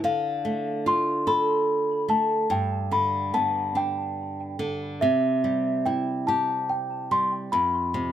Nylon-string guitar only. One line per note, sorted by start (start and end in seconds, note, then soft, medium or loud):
0.04 2.46 D3 medium
0.45 2.05 A3 soft
0.86 2.46 F4 medium
1.27 2.46 A4 soft
2.08 2.49 A3 soft
2.50 4.98 G2 medium
2.92 4.56 D3 soft
3.34 4.98 B3 soft
3.75 4.98 D4 soft
4.59 5.00 D3 soft
5.02 7.49 C3 medium
5.44 7.07 G3 soft
5.86 7.49 E4 soft
6.28 7.49 G4 soft
7.11 7.51 G3 soft
7.53 8.12 F2 medium
7.94 8.12 C3 soft